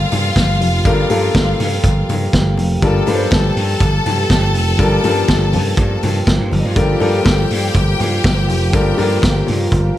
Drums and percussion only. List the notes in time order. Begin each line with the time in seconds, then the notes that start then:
0.12 open hi-hat, muted conga, low conga
0.36 kick, snare, closed hi-hat, high conga
0.60 open hi-hat, high conga
0.85 kick, closed hi-hat, muted conga
1.10 open hi-hat, muted conga
1.34 kick, snare, closed hi-hat, high conga
1.59 open hi-hat, low conga
1.84 kick, closed hi-hat
2.09 open hi-hat, muted conga, low conga
2.33 kick, snare, closed hi-hat, high conga
2.58 open hi-hat, high conga
2.82 kick, closed hi-hat, muted conga
3.07 open hi-hat, muted conga
3.31 kick, snare, closed hi-hat, high conga
3.57 open hi-hat
3.80 kick, closed hi-hat
4.06 open hi-hat, muted conga, low conga
4.30 kick, snare, closed hi-hat, high conga
4.55 open hi-hat, high conga
4.79 kick, closed hi-hat, muted conga
5.04 open hi-hat, muted conga
5.28 kick, snare, closed hi-hat, high conga
5.53 open hi-hat, low conga
5.77 kick, closed hi-hat
6.03 open hi-hat, muted conga, low conga
6.27 kick, snare, closed hi-hat, high conga
6.52 open hi-hat, high conga
6.76 kick, closed hi-hat, muted conga
7.00 open hi-hat, muted conga
7.25 kick, snare, closed hi-hat, high conga
7.51 open hi-hat
7.75 kick, closed hi-hat, muted conga
8.00 open hi-hat, muted conga, low conga
8.24 kick, snare, closed hi-hat, high conga
8.49 open hi-hat, high conga
8.73 kick, closed hi-hat, muted conga
8.98 open hi-hat, muted conga
9.22 kick, snare, closed hi-hat, high conga
9.47 open hi-hat, low conga
9.72 kick, closed hi-hat